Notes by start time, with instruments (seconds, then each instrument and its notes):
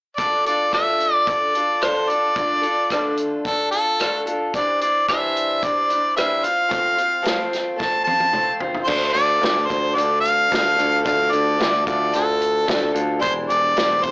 0.17 steel-string acoustic guitar D3 A3 D4 F4 A4, harmonica D5, kick, closed hi-hat
0.45 steel-string acoustic guitar D4 F4 A4, harmonica D5, closed hi-hat
0.71 steel-string acoustic guitar D3 A3 D4 F4 A4, harmonica E5, kick, cross-stick, closed hi-hat
1.00 closed hi-hat
1.14 harmonica D5
1.26 steel-string acoustic guitar A3 D4 F4 A4, kick, closed hi-hat
1.30 harmonica D5
1.54 steel-string acoustic guitar D4 F4 A4, closed hi-hat
1.81 steel-string acoustic guitar D3 A3 D4 F4 A4, harmonica C5, cross-stick, closed hi-hat
2.09 steel-string acoustic guitar D4 F4 A4, harmonica D5, closed hi-hat
2.36 steel-string acoustic guitar D3 A3 D4 F4 A4, kick, closed hi-hat
2.62 steel-string acoustic guitar D4 F4 A4, closed hi-hat
2.90 steel-string acoustic guitar D3 A3 D4 F4 A4, kick, cross-stick, closed hi-hat
3.17 closed hi-hat
3.45 steel-string acoustic guitar A3 D4 F4 A4, harmonica A4, kick, closed hi-hat
3.71 steel-string acoustic guitar D4 F4 A4, harmonica A4, closed hi-hat
4.00 steel-string acoustic guitar D3 A3 D4 F4 A4, cross-stick, closed hi-hat
4.26 steel-string acoustic guitar D4 F4 A4, closed hi-hat
4.53 steel-string acoustic guitar E3 G3 D4 E4 C5, harmonica D5, kick, closed hi-hat
4.81 steel-string acoustic guitar D4 E4 C5, harmonica D5, closed hi-hat
5.08 steel-string acoustic guitar E3 G3 D4 E4 C5, harmonica E5, kick, cross-stick, closed hi-hat
5.37 closed hi-hat
5.62 steel-string acoustic guitar G3 D4 E4, harmonica D5, kick, closed hi-hat
5.66 steel-string acoustic guitar C5
5.89 steel-string acoustic guitar D4 E4 C5, closed hi-hat
6.16 steel-string acoustic guitar E3 G3 D4 E4 C5, harmonica E5, cross-stick, closed hi-hat
6.42 steel-string acoustic guitar C4 F4 C5, harmonica F5, closed hi-hat
6.68 steel-string acoustic guitar F3 A3 C4 F4 C5, kick, closed hi-hat
6.95 steel-string acoustic guitar C4 F4 C5, closed hi-hat
7.22 steel-string acoustic guitar F3 A3 C4 F4 C5, closed hi-hat
7.27 snare
7.53 snare, closed hi-hat
7.76 steel-string acoustic guitar A3 C4 F4 C5, harmonica A5, kick
7.81 snare
8.04 steel-string acoustic guitar F4 C5, harmonica A5, high tom
8.09 steel-string acoustic guitar C4
8.20 high tom
8.32 steel-string acoustic guitar F3 A3 C4 F4 C5, mid tom
8.60 steel-string acoustic guitar C4 F4 C5, floor tom
8.75 floor tom
8.84 steel-string acoustic guitar D3 A3 D4 F4, harmonica C5
8.88 picked electric bass D2, steel-string acoustic guitar A4, kick, crash
9.13 picked electric bass D2, harmonica D5, closed hi-hat
9.41 picked electric bass D2, steel-string acoustic guitar A3 D4 F4 A4, snare, closed hi-hat
9.66 picked electric bass D2, harmonica C5, kick, closed hi-hat
9.94 picked electric bass D2, steel-string acoustic guitar D3 A3 D4 F4 A4, harmonica D5
9.98 closed hi-hat
10.21 harmonica F5
10.25 closed hi-hat
10.49 picked electric bass D2, steel-string acoustic guitar A3 D4 F4 A4, kick, closed hi-hat
10.54 snare
10.76 picked electric bass D2, steel-string acoustic guitar D4 F4 A4, closed hi-hat
11.03 picked electric bass D2, steel-string acoustic guitar D3 A3 D4 F4 A4, harmonica F5, kick, closed hi-hat
11.31 picked electric bass D2, harmonica D5, closed hi-hat
11.57 picked electric bass D2, steel-string acoustic guitar A3 D4 F4 A4, closed hi-hat
11.62 snare
11.85 picked electric bass D2, steel-string acoustic guitar D4 F4 A4, harmonica D5, kick, closed hi-hat
12.12 picked electric bass D2, steel-string acoustic guitar D3 A3 D4 F4 A4, harmonica A4, closed hi-hat
12.42 closed hi-hat
12.65 picked electric bass D2, steel-string acoustic guitar A3 D4 F4 A4, kick, closed hi-hat
12.69 snare
12.92 picked electric bass D2, steel-string acoustic guitar D4 F4 A4, closed hi-hat
13.19 picked electric bass E1, steel-string acoustic guitar E3 G3 D4 E4 C5, harmonica C5, kick, closed hi-hat
13.49 picked electric bass E1, harmonica D5, closed hi-hat
13.75 picked electric bass E1, steel-string acoustic guitar G3 D4 E4 C5, snare, closed hi-hat
14.02 picked electric bass E1, steel-string acoustic guitar D4 E4 C5, harmonica C5, kick, closed hi-hat